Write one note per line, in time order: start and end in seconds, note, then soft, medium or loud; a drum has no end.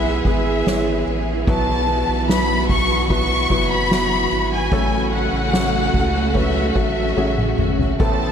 0.00 0.22 B1 medium
0.00 1.50 E3 medium
0.00 1.72 E3 medium
0.00 4.69 E3 medium
0.00 0.26 G#3 medium
0.00 0.26 B3 medium
0.00 0.66 B3 medium
0.00 0.25 E4 medium
0.00 0.26 E4 medium
0.00 0.26 G#4 medium
0.00 1.45 G#4 medium
0.00 1.56 G#4 medium
0.00 0.27 B4 loud
0.00 0.25 E5 medium
0.24 0.63 G#1 medium
0.24 0.65 G#3 medium
0.24 0.65 B3 medium
0.24 1.07 E4 medium
0.24 0.64 E4 medium
0.24 0.65 G#4 medium
0.24 0.65 B4 medium
0.24 1.05 E5 medium
0.24 kick medium
0.24 ride soft
0.66 1.04 G#1 medium
0.66 1.44 G#3 medium
0.66 1.88 B3 medium
0.66 1.44 B3 medium
0.66 1.44 E4 medium
0.66 1.44 G#4 medium
0.66 1.44 C#5 medium
0.66 snare loud
1.07 1.45 A1 medium
1.07 2.29 E4 medium
1.07 ride medium
1.47 2.05 B1 loud
1.47 4.73 B2 medium
1.47 2.66 B2 medium
1.47 2.25 F#3 loud
1.47 2.25 B3 medium
1.47 2.25 E4 medium
1.47 4.69 F#4 medium
1.47 2.25 F#4 medium
1.47 2.26 B4 loud
1.47 2.26 A5 loud
1.47 kick loud
1.47 ride medium
1.87 3.09 B3 medium
1.87 ride medium
2.09 3.47 B1 medium
2.29 3.07 F#3 medium
2.29 3.07 B3 medium
2.29 3.50 E4 medium
2.29 3.07 E4 medium
2.29 3.07 F#4 medium
2.29 3.07 B4 medium
2.29 2.70 B5 loud
2.29 snare loud
2.29 ride medium
2.69 5.53 F#4 medium
2.69 3.08 C#6 loud
2.69 kick medium
2.69 ride medium
3.09 3.49 F#3 medium
3.09 3.90 B3 medium
3.09 3.49 B3 medium
3.09 3.49 E4 medium
3.09 3.49 F#4 medium
3.09 3.49 B4 medium
3.09 3.68 C#6 loud
3.09 kick medium
3.09 ride medium
3.50 4.28 F#1 medium
3.50 3.89 F#3 medium
3.50 3.89 B3 medium
3.50 3.89 E4 medium
3.50 4.31 E4 medium
3.50 3.89 F#4 medium
3.50 3.90 B4 medium
3.50 kick medium
3.50 ride medium
3.72 4.52 B5 loud
3.91 4.69 F#3 medium
3.91 4.81 B3 medium
3.91 4.69 B3 medium
3.91 4.69 E4 medium
3.91 4.69 F#4 medium
3.91 4.69 B4 medium
3.91 snare loud
4.31 4.70 G#1 medium
4.31 4.81 E4 medium
4.31 ride medium
4.54 5.10 G#5 loud
4.71 5.29 A1 loud
4.71 5.90 A2 medium
4.71 7.96 C#3 medium
4.71 5.49 F#3 medium
4.71 7.96 A3 medium
4.71 8.22 A3 medium
4.71 5.49 A3 medium
4.71 5.50 C#4 medium
4.71 7.96 F#4 medium
4.71 5.50 F#4 medium
4.71 5.50 A4 loud
4.71 kick loud
4.71 ride medium
5.11 6.33 C#4 medium
5.11 6.32 F#5 medium
5.11 ride medium
5.32 5.90 A1 loud
5.53 6.31 F#3 medium
5.53 6.31 A3 medium
5.53 6.31 C#4 medium
5.53 6.74 F#4 medium
5.53 6.31 F#4 medium
5.53 6.31 A4 medium
5.53 snare loud
5.53 ride medium
5.93 6.72 C#2 medium
5.93 8.32 A4 medium
5.93 kick medium
5.93 ride medium
6.34 6.74 F#3 medium
6.34 6.74 A3 medium
6.34 7.15 C#4 medium
6.34 6.74 C#4 medium
6.34 6.74 F#4 medium
6.34 6.74 B4 medium
6.34 6.70 E5 medium
6.34 kick medium
6.34 ride medium
6.71 6.77 F#5 medium
6.75 7.14 A1 medium
6.75 7.15 F#3 medium
6.75 7.15 A3 medium
6.75 7.15 C#4 medium
6.75 7.57 F#4 medium
6.75 7.15 F#4 medium
6.75 7.15 A4 medium
6.75 kick medium
6.75 ride medium
6.79 7.60 E5 medium
7.16 7.55 A1 medium
7.16 7.95 F#3 medium
7.16 7.96 A3 medium
7.16 8.08 C#4 medium
7.16 7.95 C#4 medium
7.16 7.96 F#4 medium
7.16 7.96 G#4 medium
7.16 high tom medium
7.38 mid tom medium
7.58 7.97 G#1 medium
7.58 8.08 F#4 medium
7.58 mid tom medium
7.79 floor tom medium
8.00 8.32 A1 loud
8.00 8.32 A2 medium
8.00 8.32 C3 medium
8.00 8.32 A3 medium
8.00 8.32 B3 medium
8.00 8.32 C4 medium
8.00 8.32 E4 medium
8.00 8.32 A4 medium
8.00 8.32 A5 medium
8.00 kick loud
8.00 crash medium